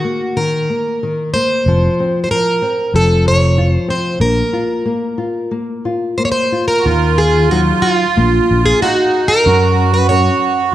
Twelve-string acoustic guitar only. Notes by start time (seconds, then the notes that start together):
Already playing: F#4
0.37 A#4
1.34 C5
2.24 C5
2.31 A#4
2.96 A4
3.28 C#5
3.73 C5
3.90 C5
4.21 A#4
6.18 C5
6.25 C#5
6.32 C5
6.68 A#4
7.18 G#4
7.51 F#4
7.82 F4
8.66 G#4
8.82 F#4
9.28 A#4
9.94 B4
10.09 C#5